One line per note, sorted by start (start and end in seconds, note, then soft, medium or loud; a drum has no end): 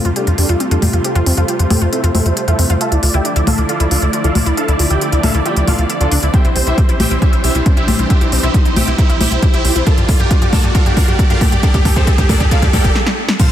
0.00 2.77 C3 medium
0.00 2.77 G3 medium
0.00 6.30 A3 medium
0.00 2.77 F4 medium
0.00 riser medium
0.05 0.12 F2 medium
0.05 0.09 F4 loud
0.05 0.14 F4 medium
0.05 closed hi-hat medium
0.16 0.25 D4 medium
0.16 0.22 G4 medium
0.16 0.25 G4 medium
0.16 0.25 A4 medium
0.16 0.25 D5 medium
0.16 closed hi-hat medium
0.27 0.34 F2 medium
0.27 0.31 F4 medium
0.27 0.36 F4 medium
0.27 closed hi-hat medium
0.38 0.45 F2 medium
0.38 0.47 D4 medium
0.38 0.42 G4 medium
0.38 0.47 G4 medium
0.38 0.47 A4 medium
0.38 0.47 D5 medium
0.38 open hi-hat loud
0.49 0.56 F2 medium
0.49 0.56 F4 loud
0.49 0.58 F4 medium
0.49 closed hi-hat medium
0.60 0.63 C4 medium
0.60 0.69 F4 medium
0.60 closed hi-hat medium
0.71 0.78 F2 medium
0.71 0.80 D4 medium
0.71 0.75 F4 loud
0.71 0.80 G4 medium
0.71 0.80 A4 medium
0.71 0.80 D5 medium
0.71 closed hi-hat medium
0.82 0.89 F2 loud
0.82 0.92 F4 medium
0.82 0.89 G4 medium
0.82 open hi-hat medium
0.82 high conga medium
0.93 1.00 F2 medium
0.93 0.98 F4 medium
0.93 1.03 F4 medium
0.93 closed hi-hat medium
1.04 1.09 G4 medium
1.04 1.14 G4 medium
1.04 1.14 A4 medium
1.04 1.14 C5 medium
1.04 1.14 G5 loud
1.04 closed hi-hat medium
1.15 1.22 F2 medium
1.15 1.22 F4 loud
1.15 1.25 C5 medium
1.15 closed hi-hat soft
1.26 1.33 F2 loud
1.26 1.29 C4 medium
1.26 1.36 C5 medium
1.26 open hi-hat loud
1.37 1.44 F2 medium
1.37 1.42 F4 loud
1.37 1.47 F4 medium
1.37 1.47 A4 medium
1.37 1.47 C5 medium
1.37 1.47 F5 medium
1.37 closed hi-hat soft
1.48 1.55 G4 medium
1.48 1.58 C5 medium
1.48 closed hi-hat medium
1.59 1.66 F2 medium
1.59 1.64 F4 medium
1.59 1.69 C5 medium
1.59 closed hi-hat medium
1.70 1.77 F2 medium
1.70 1.75 G4 medium
1.70 1.80 G4 medium
1.70 1.80 A4 medium
1.70 1.80 C5 medium
1.70 1.80 G5 medium
1.70 open hi-hat loud
1.70 high conga medium
1.82 1.88 F2 medium
1.82 1.88 F4 loud
1.82 1.91 C5 medium
1.82 closed hi-hat soft
1.93 1.95 C4 medium
1.93 2.02 E4 medium
1.93 2.02 A4 medium
1.93 2.02 C5 medium
1.93 2.02 E5 medium
1.93 closed hi-hat medium
2.04 2.10 F2 medium
2.04 2.08 F4 loud
2.04 2.13 C5 medium
2.04 closed hi-hat medium
2.15 2.21 F2 loud
2.15 2.24 E4 medium
2.15 2.21 G4 medium
2.15 2.24 A4 medium
2.15 2.24 C5 medium
2.15 2.24 E5 medium
2.15 open hi-hat loud
2.15 high conga medium
2.26 2.32 F2 medium
2.26 2.30 F4 medium
2.26 2.35 C5 medium
2.26 closed hi-hat medium
2.37 2.41 G4 medium
2.37 2.46 C5 medium
2.37 closed hi-hat medium
2.48 2.54 F2 medium
2.48 2.57 E4 medium
2.48 2.54 F4 loud
2.48 2.57 A4 medium
2.48 2.57 C5 medium
2.48 2.57 E5 medium
2.48 closed hi-hat soft
2.59 2.65 F2 medium
2.59 2.61 C4 medium
2.59 2.68 C5 medium
2.59 open hi-hat loud
2.70 2.77 F2 medium
2.70 2.74 F4 loud
2.70 2.79 C5 medium
2.70 closed hi-hat medium
2.81 6.30 D3 medium
2.81 6.30 F3 medium
2.81 6.30 E4 medium
2.81 2.87 F4 medium
2.81 2.90 A4 medium
2.81 2.90 E5 medium
2.81 2.90 F5 medium
2.81 2.90 A5 loud
2.81 closed hi-hat medium
2.92 2.99 D2 medium
2.92 2.96 E4 medium
2.92 3.01 D5 medium
2.92 closed hi-hat soft
3.03 3.10 D2 loud
3.03 3.07 F4 medium
3.03 3.12 D5 medium
3.03 open hi-hat loud
3.14 3.21 D2 medium
3.14 3.20 E4 loud
3.14 3.23 G4 medium
3.14 3.23 D5 medium
3.14 3.23 E5 medium
3.14 3.23 G5 medium
3.14 closed hi-hat soft
3.25 3.28 D4 medium
3.25 3.34 D5 medium
3.25 closed hi-hat medium
3.36 3.43 D2 medium
3.36 3.40 E4 loud
3.36 3.45 D5 medium
3.36 closed hi-hat soft
3.47 3.54 D2 loud
3.47 3.53 F4 medium
3.47 3.56 A4 medium
3.47 3.56 E5 medium
3.47 3.56 F5 medium
3.47 3.56 A5 medium
3.47 open hi-hat loud
3.47 high conga medium
3.58 3.65 D2 medium
3.58 3.62 E4 medium
3.58 3.67 D5 medium
3.58 closed hi-hat soft
3.69 3.78 F4 medium
3.69 3.73 F4 medium
3.69 3.78 A4 medium
3.69 3.78 D5 medium
3.69 3.78 F5 medium
3.69 closed hi-hat medium
3.80 3.87 D2 medium
3.80 3.86 E4 loud
3.80 3.89 D5 medium
3.80 closed hi-hat soft
3.91 3.98 D2 loud
3.91 3.94 D4 medium
3.91 4.00 F4 medium
3.91 4.00 A4 medium
3.91 4.00 D5 medium
3.91 4.00 F5 medium
3.91 open hi-hat loud
4.02 4.09 D2 medium
4.02 4.06 E4 loud
4.02 4.11 D5 medium
4.02 closed hi-hat soft
4.13 4.19 F4 medium
4.13 4.22 D5 medium
4.13 closed hi-hat medium
4.24 4.31 D2 medium
4.24 4.28 E4 medium
4.24 4.33 F4 medium
4.24 4.33 A4 medium
4.24 4.33 D5 medium
4.24 4.33 F5 medium
4.24 closed hi-hat soft
4.35 4.42 D2 loud
4.35 4.39 F4 medium
4.35 4.44 D5 medium
4.35 open hi-hat loud
4.35 high conga medium
4.46 4.53 D2 medium
4.46 4.53 E4 loud
4.46 4.55 D5 medium
4.46 closed hi-hat medium
4.57 4.60 D4 medium
4.57 4.66 A4 medium
4.57 4.66 E5 medium
4.57 4.66 F5 medium
4.57 4.66 A5 loud
4.57 closed hi-hat medium
4.68 4.75 D2 medium
4.68 4.73 E4 loud
4.68 4.78 D5 medium
4.68 closed hi-hat soft
4.79 4.86 D2 loud
4.79 4.86 F4 medium
4.79 4.89 D5 medium
4.79 open hi-hat loud
4.90 4.97 D2 medium
4.90 4.95 E4 medium
4.90 4.99 G4 medium
4.90 4.99 D5 medium
4.90 4.99 E5 medium
4.90 4.99 G5 medium
4.90 closed hi-hat soft
5.01 5.06 F4 medium
5.01 5.11 D5 medium
5.01 closed hi-hat medium
5.12 5.19 D2 medium
5.12 5.19 E4 loud
5.12 5.22 D5 medium
5.12 closed hi-hat soft
5.23 5.30 D2 loud
5.23 5.26 D4 medium
5.23 5.33 A4 medium
5.23 5.33 E5 medium
5.23 5.33 F5 medium
5.23 5.33 A5 medium
5.23 open hi-hat loud
5.23 high conga medium
5.34 5.41 D2 medium
5.34 5.39 E4 loud
5.34 5.44 D5 medium
5.34 closed hi-hat soft
5.46 5.52 F4 medium
5.46 5.55 G4 medium
5.46 5.55 D5 medium
5.46 5.55 E5 medium
5.46 5.55 G5 medium
5.46 closed hi-hat medium
5.56 5.63 D2 medium
5.56 5.61 E4 medium
5.56 5.66 D5 medium
5.56 closed hi-hat soft
5.68 5.74 D2 loud
5.68 5.74 F4 loud
5.68 5.77 F4 medium
5.68 5.77 A4 medium
5.68 5.77 D5 medium
5.68 5.77 F5 medium
5.68 open hi-hat loud
5.68 high conga medium
5.79 5.85 D2 medium
5.79 5.83 E4 medium
5.79 5.88 D5 medium
5.79 closed hi-hat soft
5.90 5.99 D5 medium
5.90 5.94 E5 medium
5.90 closed hi-hat medium
6.01 6.07 D2 medium
6.01 6.10 D4 medium
6.01 6.05 F4 medium
6.01 6.10 F4 medium
6.01 6.10 A4 medium
6.01 6.10 D5 loud
6.01 closed hi-hat soft
6.12 6.18 D2 loud
6.12 6.16 D4 loud
6.12 6.21 D5 medium
6.12 open hi-hat loud
6.23 6.29 D2 medium
6.23 6.29 E4 loud
6.23 6.32 D5 medium
6.23 closed hi-hat medium
6.34 9.83 E3 medium
6.34 9.83 G3 medium
6.34 9.83 C4 medium
6.34 6.36 C4 medium
6.34 12.91 G4 medium
6.34 6.43 G4 medium
6.34 6.43 C5 medium
6.34 6.43 E5 medium
6.34 6.43 G5 loud
6.34 kick loud
6.34 closed hi-hat medium
6.45 6.51 C2 medium
6.45 6.49 E4 loud
6.45 6.54 C5 medium
6.45 closed hi-hat soft
6.56 6.63 C2 loud
6.56 6.62 G4 medium
6.56 6.65 C5 medium
6.56 open hi-hat loud
6.67 6.74 C2 medium
6.67 6.71 E4 medium
6.67 6.76 E4 medium
6.67 6.76 G4 medium
6.67 6.76 C5 medium
6.67 6.76 E5 medium
6.67 closed hi-hat soft
6.78 6.82 G4 medium
6.78 6.87 C5 medium
6.78 kick loud
6.78 closed hi-hat medium
6.89 6.96 C2 medium
6.89 6.95 E4 loud
6.89 6.98 C5 medium
6.89 closed hi-hat soft
7.00 7.07 C2 loud
7.00 7.02 C4 medium
7.00 7.09 G4 medium
7.00 7.09 C5 medium
7.00 7.09 E5 medium
7.00 7.09 G5 medium
7.00 open hi-hat loud
7.00 high conga medium
7.11 7.18 C2 medium
7.11 7.15 E4 loud
7.11 7.20 C5 medium
7.11 closed hi-hat medium
7.22 7.31 E4 medium
7.22 7.31 G4 medium
7.22 7.28 G4 medium
7.22 7.31 C5 medium
7.22 7.31 E5 medium
7.22 kick loud
7.22 closed hi-hat medium
7.33 7.40 C2 medium
7.33 7.37 E4 medium
7.33 7.42 C5 medium
7.33 closed hi-hat soft
7.44 7.51 C2 loud
7.44 7.53 E4 medium
7.44 7.53 G4 medium
7.44 7.48 G4 medium
7.44 7.53 C5 medium
7.44 7.53 E5 medium
7.44 open hi-hat loud
7.55 7.62 C2 medium
7.55 7.61 E4 loud
7.55 7.64 C5 medium
7.55 closed hi-hat medium
7.66 7.69 C4 medium
7.66 7.75 C5 medium
7.66 kick loud
7.66 closed hi-hat medium
7.77 7.84 C2 medium
7.77 7.86 E4 medium
7.77 7.81 E4 loud
7.77 7.86 G4 medium
7.77 7.86 C5 medium
7.77 7.86 E5 medium
7.77 closed hi-hat soft
7.88 7.95 C2 loud
7.88 7.94 G4 medium
7.88 7.97 C5 medium
7.88 open hi-hat loud
7.88 high conga medium
7.99 8.06 C2 medium
7.99 8.03 E4 medium
7.99 8.08 C5 medium
7.99 closed hi-hat medium
8.10 8.19 G4 medium
8.10 8.14 G4 medium
8.10 8.19 C5 medium
8.10 8.19 E5 medium
8.10 8.19 G5 loud
8.10 kick loud
8.10 closed hi-hat medium
8.21 8.28 C2 medium
8.21 8.28 E4 loud
8.21 8.30 C5 medium
8.21 closed hi-hat soft
8.32 8.39 C2 loud
8.32 8.35 C4 medium
8.32 8.41 C5 medium
8.32 open hi-hat loud
8.43 8.50 C2 medium
8.43 8.52 E4 medium
8.43 8.48 E4 loud
8.43 8.53 G4 medium
8.43 8.52 C5 medium
8.43 8.52 E5 loud
8.43 closed hi-hat soft
8.54 8.61 G4 medium
8.54 8.64 C5 medium
8.54 kick loud
8.54 closed hi-hat medium
8.65 8.72 C2 medium
8.65 8.70 E4 medium
8.65 8.75 C5 medium
8.65 closed hi-hat soft
8.76 8.83 C2 loud
8.76 8.81 G4 medium
8.76 8.86 G4 medium
8.76 8.86 C5 medium
8.76 8.86 E5 medium
8.76 8.86 G5 medium
8.76 open hi-hat loud
8.76 high conga medium
8.87 8.94 C2 medium
8.87 8.94 E4 loud
8.87 8.97 C5 medium
8.87 closed hi-hat medium
8.98 9.01 C4 medium
8.98 9.08 E4 medium
8.98 9.08 G4 medium
8.98 9.08 C5 medium
8.98 9.08 E5 medium
8.98 kick loud
8.98 closed hi-hat medium
9.09 9.16 C2 medium
9.09 9.14 E4 loud
9.09 9.19 C5 medium
9.09 closed hi-hat medium
9.20 9.27 C2 loud
9.20 9.30 E4 medium
9.20 9.30 G4 medium
9.20 9.27 G4 medium
9.20 9.30 C5 medium
9.20 9.30 E5 medium
9.20 open hi-hat loud
9.20 high conga medium
9.31 9.38 C2 medium
9.31 9.36 E4 medium
9.31 9.41 C5 medium
9.31 closed hi-hat medium
9.42 9.47 G4 medium
9.42 9.52 C5 medium
9.42 kick loud
9.42 closed hi-hat medium
9.53 9.60 C2 medium
9.53 9.63 E4 medium
9.53 9.60 E4 loud
9.53 9.63 G4 medium
9.53 9.63 C5 medium
9.53 9.63 E5 loud
9.53 closed hi-hat medium
9.64 9.71 C2 loud
9.64 9.67 C4 medium
9.64 9.74 C5 medium
9.64 open hi-hat loud
9.75 9.82 C2 medium
9.75 9.80 E4 loud
9.75 9.85 C5 medium
9.75 closed hi-hat medium
9.86 12.92 D3 medium
9.86 12.92 A3 medium
9.86 12.92 A#3 medium
9.86 9.96 A4 medium
9.86 9.93 A4 medium
9.86 9.96 A#4 medium
9.86 9.96 D5 medium
9.86 9.96 A5 loud
9.86 kick loud
9.86 closed hi-hat medium
9.97 10.04 G2 medium
9.97 10.02 G4 medium
9.97 10.07 D5 medium
9.97 closed hi-hat medium
10.08 10.15 G2 loud
10.08 10.13 A4 medium
10.08 10.18 D5 medium
10.08 kick loud
10.08 open hi-hat loud
10.19 10.26 G2 medium
10.19 10.29 G4 medium
10.19 10.26 G4 loud
10.19 10.29 A#4 medium
10.19 10.29 D5 medium
10.19 10.29 G5 loud
10.19 closed hi-hat medium
10.31 10.33 D4 medium
10.31 10.40 D5 medium
10.31 kick loud
10.31 closed hi-hat medium
10.42 10.48 G2 medium
10.42 10.46 G4 loud
10.42 10.51 D5 medium
10.42 closed hi-hat medium
10.53 10.60 G2 loud
10.53 10.62 A4 medium
10.53 10.59 A4 medium
10.53 10.62 A#4 medium
10.53 10.62 D5 medium
10.53 10.62 A5 medium
10.53 kick loud
10.53 open hi-hat loud
10.53 high conga medium
10.64 10.71 G2 medium
10.64 10.68 G4 medium
10.64 10.73 D5 medium
10.64 closed hi-hat medium
10.75 10.84 F4 medium
10.75 10.79 A4 medium
10.75 10.84 A#4 medium
10.75 10.84 D5 medium
10.75 10.84 F5 medium
10.75 kick loud
10.75 closed hi-hat medium
10.86 10.93 G2 medium
10.86 10.92 G4 loud
10.86 10.95 D5 medium
10.86 closed hi-hat medium
10.97 11.04 G2 loud
10.97 11.00 D4 medium
10.97 11.06 F4 medium
10.97 11.06 A#4 medium
10.97 11.06 D5 medium
10.97 11.06 F5 medium
10.97 kick loud
10.97 open hi-hat loud
11.08 11.15 G2 medium
11.08 11.12 G4 loud
11.08 11.17 D5 medium
11.08 closed hi-hat medium
11.19 11.25 A4 medium
11.19 11.28 D5 medium
11.19 kick loud
11.19 closed hi-hat medium
11.30 11.37 G2 medium
11.30 11.39 F4 medium
11.30 11.34 G4 medium
11.30 11.39 A#4 medium
11.30 11.39 D5 medium
11.30 11.39 F5 medium
11.30 closed hi-hat medium
11.41 11.48 G2 loud
11.41 11.45 A4 medium
11.41 11.50 D5 medium
11.41 kick loud
11.41 open hi-hat loud
11.41 high conga medium
11.52 11.59 G2 medium
11.52 11.58 G4 loud
11.52 11.61 D5 medium
11.52 closed hi-hat medium
11.63 11.72 D4 medium
11.63 11.66 D4 medium
11.63 11.72 A4 medium
11.63 11.72 A#4 medium
11.63 11.72 D5 loud
11.63 kick loud
11.63 closed hi-hat medium
11.74 11.81 G2 medium
11.74 11.83 G4 medium
11.74 11.78 G4 loud
11.74 kick medium
11.74 closed hi-hat medium
11.85 11.92 G2 loud
11.85 11.94 G4 medium
11.85 11.92 A4 medium
11.85 kick loud
11.85 open hi-hat loud
11.96 12.03 G2 medium
11.96 12.05 C4 medium
11.96 12.05 G4 medium
11.96 12.00 G4 medium
11.96 12.05 A4 medium
11.96 12.05 C5 loud
11.96 kick loud
11.96 closed hi-hat medium
12.07 12.16 G4 medium
12.07 12.11 A4 medium
12.07 kick loud
12.07 closed hi-hat medium
12.18 12.25 G2 medium
12.18 12.27 G4 medium
12.18 12.25 G4 loud
12.18 kick medium
12.18 closed hi-hat medium
12.29 12.36 G2 loud
12.29 12.38 D4 medium
12.29 12.32 D4 medium
12.29 12.38 A4 medium
12.29 12.38 A#4 medium
12.29 12.38 D5 medium
12.29 kick loud
12.29 open hi-hat loud
12.29 high conga medium
12.40 12.47 G2 medium
12.40 12.49 G4 medium
12.40 12.45 G4 loud
12.40 kick medium
12.40 closed hi-hat medium
12.51 12.61 F4 medium
12.51 12.58 A4 medium
12.51 12.61 A#4 medium
12.51 12.61 D5 medium
12.51 12.60 F5 medium
12.51 kick loud
12.51 closed hi-hat medium
12.62 12.69 G2 medium
12.62 12.67 G4 medium
12.62 12.72 G4 medium
12.62 kick loud
12.62 closed hi-hat medium
12.73 12.80 G2 loud
12.73 12.83 G4 medium
12.73 12.78 A4 medium
12.73 12.83 A#4 medium
12.73 12.83 D5 medium
12.73 12.83 G5 medium
12.73 kick loud
12.73 open hi-hat loud
12.73 high conga medium
12.84 12.91 G1 medium
12.84 12.91 G4 loud
12.84 12.94 G4 medium
12.84 kick medium
12.84 closed hi-hat medium
12.95 snare medium
13.06 snare medium
13.29 snare medium
13.40 13.42 C4 medium
13.40 13.49 F4 medium
13.40 13.49 A4 medium
13.40 13.49 C5 medium
13.40 13.49 F5 loud
13.40 kick loud
13.40 closed hi-hat medium
13.40 crash loud
13.40 impact medium
13.40 cabasa medium